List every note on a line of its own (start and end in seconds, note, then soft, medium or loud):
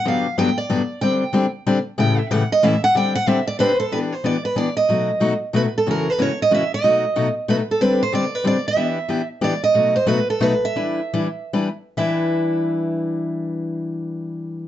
0.05 0.26 G2 medium
0.05 0.26 D3 medium
0.05 0.26 F#3 medium
0.05 0.26 B3 medium
0.05 0.26 D4 medium
0.05 0.26 G4 medium
0.05 0.37 F5 medium
0.38 0.49 G2 medium
0.38 0.49 D3 medium
0.38 0.49 F#3 medium
0.38 0.49 B3 loud
0.38 0.49 D4 medium
0.38 0.49 G4 loud
0.38 0.57 G5 loud
0.58 0.99 D5 medium
0.70 0.81 G2 medium
0.70 0.81 D3 medium
0.70 0.81 F#3 medium
0.70 0.81 B3 loud
0.70 0.81 D4 medium
0.70 0.81 G4 loud
1.01 1.23 D3 medium
1.01 1.23 G3 medium
1.01 1.23 C4 medium
1.01 1.23 D4 medium
1.01 1.23 G4 medium
1.01 1.50 G5 medium
1.33 1.45 D3 medium
1.33 1.45 G3 medium
1.33 1.45 C4 loud
1.33 1.45 D4 medium
1.33 1.45 G4 medium
1.66 1.78 D3 medium
1.66 1.78 G3 medium
1.66 1.78 C4 loud
1.66 1.78 D4 loud
1.66 1.78 G4 loud
1.98 2.19 A2 medium
1.98 2.19 C#3 medium
1.98 2.19 E3 medium
1.98 2.19 A3 medium
1.98 2.19 C#4 medium
1.98 2.19 G4 medium
1.98 2.18 G5 medium
2.18 2.31 E5 loud
2.31 2.42 A2 medium
2.31 2.42 C#3 medium
2.31 2.42 E3 loud
2.31 2.42 A3 loud
2.31 2.42 C#4 medium
2.31 2.42 G4 loud
2.31 2.50 F#5 loud
2.52 2.64 D#5 loud
2.63 2.74 A2 loud
2.63 2.74 C#3 medium
2.63 2.74 E3 loud
2.63 2.74 A3 loud
2.63 2.74 C#4 loud
2.63 2.75 G4 loud
2.63 2.83 E5 medium
2.84 2.96 F#5 loud
2.95 3.16 D3 medium
2.95 3.16 G3 medium
2.95 3.16 C4 medium
2.95 3.16 D4 medium
2.95 3.16 G4 medium
2.95 3.15 G5 loud
3.15 3.29 F#5 loud
3.27 3.39 D3 loud
3.27 3.39 G3 medium
3.27 3.39 C4 loud
3.27 3.39 D4 loud
3.27 3.39 G4 loud
3.27 3.47 E5 loud
3.47 3.58 D5 loud
3.59 3.71 D3 medium
3.59 3.71 G3 medium
3.59 3.71 C4 loud
3.59 3.71 D4 medium
3.59 3.71 G4 loud
3.59 3.79 B4 loud
3.59 3.84 C5 medium
3.80 3.91 A4 medium
3.92 4.13 E3 medium
3.92 4.13 B3 medium
3.92 4.13 D4 medium
3.92 4.13 G4 medium
3.92 3.98 B4 medium
4.12 4.25 C5 medium
4.24 4.35 E3 medium
4.24 4.36 B3 medium
4.24 4.36 D4 medium
4.24 4.36 G4 medium
4.24 4.44 D5 medium
4.45 4.56 B4 medium
4.56 4.68 E3 medium
4.56 4.68 B3 medium
4.56 4.68 D4 medium
4.56 4.68 G4 medium
4.56 4.76 D5 medium
4.77 5.38 D#5 medium
4.89 5.10 B2 medium
4.89 5.10 F#3 medium
4.89 5.10 A3 medium
4.89 5.10 D#4 medium
4.89 5.10 F#4 medium
5.20 5.32 B2 medium
5.20 5.32 F#3 medium
5.20 5.32 A3 medium
5.20 5.32 D#4 medium
5.20 5.33 F#4 medium
5.53 5.65 B2 medium
5.53 5.65 F#3 medium
5.53 5.65 A3 medium
5.53 5.65 D#4 loud
5.53 5.65 F#4 medium
5.53 5.61 B4 medium
5.78 5.89 A4 medium
5.86 6.07 F#2 medium
5.86 6.07 C#3 medium
5.86 6.07 E3 medium
5.86 6.07 A#3 medium
5.86 6.07 C#4 medium
5.86 6.07 F#4 medium
5.91 6.10 A#4 medium
6.10 6.21 B4 medium
6.18 6.30 F#2 medium
6.18 6.30 C#3 medium
6.18 6.30 E3 medium
6.18 6.30 A#3 medium
6.18 6.30 C#4 medium
6.18 6.30 F#4 medium
6.18 6.39 C#5 medium
6.42 6.53 D#5 medium
6.51 6.62 F#2 medium
6.51 6.62 C#3 medium
6.51 6.62 E3 medium
6.51 6.62 A#3 medium
6.51 6.62 C#4 medium
6.51 6.63 F#4 medium
6.51 6.73 E5 medium
6.74 7.33 D#5 loud
6.84 7.04 B2 medium
6.84 7.04 F#3 medium
6.84 7.04 A3 medium
6.84 7.04 D#4 medium
6.84 7.04 F#4 medium
7.16 7.27 B2 medium
7.16 7.27 F#3 medium
7.16 7.27 A3 medium
7.16 7.27 D#4 medium
7.16 7.27 F#4 medium
7.48 7.59 B2 medium
7.48 7.59 F#3 medium
7.48 7.60 A3 medium
7.48 7.60 D#4 medium
7.48 7.60 F#4 medium
7.48 7.55 B4 medium
7.71 7.81 A4 medium
7.81 8.01 D3 medium
7.81 8.01 G3 medium
7.81 8.01 C4 medium
7.81 8.02 D4 medium
7.81 8.02 G4 medium
7.81 8.01 B4 medium
8.03 8.14 C5 medium
8.12 8.24 D3 medium
8.12 8.24 G3 medium
8.12 8.24 C4 medium
8.12 8.24 D4 medium
8.12 8.24 G4 medium
8.12 8.35 D5 medium
8.35 8.46 B4 medium
8.44 8.56 D3 medium
8.44 8.56 G3 medium
8.44 8.56 C4 medium
8.44 8.56 D4 medium
8.44 8.56 G4 medium
8.44 8.67 D5 medium
8.68 9.27 E5 medium
8.77 8.98 E3 medium
8.77 8.98 B3 medium
8.77 8.98 D4 medium
8.77 8.98 G4 medium
9.09 9.20 E3 medium
9.09 9.20 B3 medium
9.09 9.21 D4 medium
9.09 9.21 G4 medium
9.41 9.53 E3 medium
9.41 9.53 B3 medium
9.41 9.53 D4 medium
9.41 9.53 G4 medium
9.41 9.62 D5 medium
9.64 9.93 D#5 loud
9.74 9.95 B2 medium
9.74 9.95 F#3 medium
9.74 9.95 A3 medium
9.74 9.96 D#4 medium
9.74 9.95 F#4 medium
9.96 10.08 C5 medium
10.06 10.18 B2 medium
10.06 10.18 F#3 medium
10.06 10.18 A3 medium
10.06 10.18 D#4 medium
10.06 10.19 F#4 medium
10.06 10.29 B4 medium
10.30 10.42 A4 medium
10.40 10.52 B2 medium
10.40 10.52 F#3 medium
10.40 10.53 A3 medium
10.40 10.53 D#4 medium
10.40 10.53 F#4 medium
10.40 10.63 B4 medium
10.65 11.77 E5 medium
10.75 10.99 E3 medium
10.75 10.99 G3 medium
10.75 10.99 D4 medium
10.75 11.00 E4 medium
10.75 10.99 B4 medium
11.13 11.27 E3 medium
11.13 11.27 G3 medium
11.13 11.27 D4 medium
11.13 11.27 E4 medium
11.13 11.27 B4 medium
11.53 11.68 E3 medium
11.53 11.68 G3 medium
11.53 11.68 D4 medium
11.53 11.68 E4 medium
11.53 11.68 B4 medium
11.97 14.68 E3 medium
11.97 14.68 G3 medium
11.97 14.68 D4 medium
11.97 14.68 E4 medium
11.97 14.68 B4 medium
11.97 14.68 E5 medium